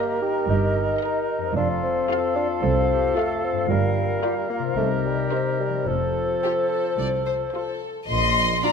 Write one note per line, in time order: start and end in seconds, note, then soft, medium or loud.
0.00 1.49 G2 soft
0.00 0.19 A#3 medium
0.00 1.51 A#3 soft
0.00 1.53 D#4 soft
0.00 0.20 G4 medium
0.00 1.52 G4 soft
0.00 0.36 A#4 medium
0.00 1.52 A#4 soft
0.00 1.52 A#4 medium
0.00 1.56 A#4 soft
0.00 0.36 D#5 medium
0.00 1.52 D#5 medium
0.21 0.48 D#4 soft
0.21 0.48 G4 medium
0.49 0.92 G1 medium
0.49 0.92 G2 medium
0.49 1.54 D#4 medium
0.49 0.83 G4 medium
1.02 1.53 D#4 medium
1.02 1.42 A#4 medium
1.02 1.43 A#4 medium
1.02 1.42 D#5 soft
1.38 3.62 F2 soft
1.43 3.65 C4 soft
1.47 3.60 F4 soft
1.52 1.98 F1 medium
1.52 3.69 A4 soft
1.56 1.98 F2 medium
1.56 1.68 D4 medium
1.56 2.11 F4 medium
1.56 4.73 F4 soft
1.56 3.66 A4 medium
1.56 4.79 F5 medium
1.84 2.35 C4 medium
2.09 2.49 F4 medium
2.09 2.49 A4 soft
2.09 2.38 A4 medium
2.09 2.49 F5 medium
2.36 2.48 D4 medium
2.36 2.62 F4 medium
2.63 3.05 C2 medium
2.63 3.15 C4 medium
2.63 2.75 A4 medium
2.89 3.15 G4 medium
3.15 3.43 A3 medium
3.15 3.56 F4 medium
3.15 3.68 A4 medium
3.15 3.55 A4 medium
3.15 3.57 F5 medium
3.44 3.70 C4 medium
3.52 4.70 G2 soft
3.56 5.83 A#3 soft
3.61 4.75 F4 soft
3.66 4.71 A#4 soft
3.66 4.21 A#4 medium
3.70 4.12 G1 medium
3.70 4.12 G2 medium
3.70 4.49 G3 medium
3.70 5.84 A#4 soft
3.70 5.89 A#4 soft
4.22 4.63 F4 soft
4.22 4.35 G4 soft
4.22 4.63 A#4 medium
4.22 4.63 D5 soft
4.49 4.62 A#3 medium
4.49 4.75 F4 soft
4.59 5.80 C3 soft
4.63 5.72 C4 soft
4.68 5.84 D#4 soft
4.72 5.19 C2 medium
4.72 5.84 G4 medium
4.72 5.87 A#4 soft
4.77 5.20 C3 medium
4.77 4.89 A3 medium
4.77 5.87 D#4 soft
4.77 5.87 D#5 soft
5.06 5.34 G3 medium
5.31 5.59 C4 medium
5.31 5.72 D#4 soft
5.31 5.73 A#4 soft
5.31 5.72 C5 soft
5.60 5.89 G3 medium
5.69 8.72 F3 soft
5.73 8.05 C4 soft
5.78 8.72 F4 soft
5.82 8.09 A4 soft
5.86 6.31 F1 medium
5.86 6.31 F2 medium
5.86 7.82 F3 medium
5.86 7.78 F4 soft
5.86 7.82 A4 soft
5.86 7.78 A4 medium
5.86 7.82 A4 soft
5.86 7.78 C5 soft
6.42 6.84 F4 soft
6.42 6.52 G4 soft
6.42 6.85 C5 soft
6.70 6.98 A4 soft
6.99 7.43 C2 soft
6.99 7.07 D5 medium
7.26 7.34 C5 soft
7.54 7.96 F4 soft
7.54 8.08 A4 soft
7.54 7.95 C5 soft
8.09 8.55 A#1 medium
8.09 8.72 A#2 soft
8.09 8.60 D#5 medium
8.09 8.60 C6 medium
8.09 8.66 C6 medium
8.28 8.72 D4 soft
8.46 8.72 A#4 soft
8.63 8.71 D4 soft
8.63 8.72 F4 soft
8.63 8.72 A4 soft
8.63 8.71 D5 soft
8.63 8.72 A#5 medium
8.63 8.72 A#5 soft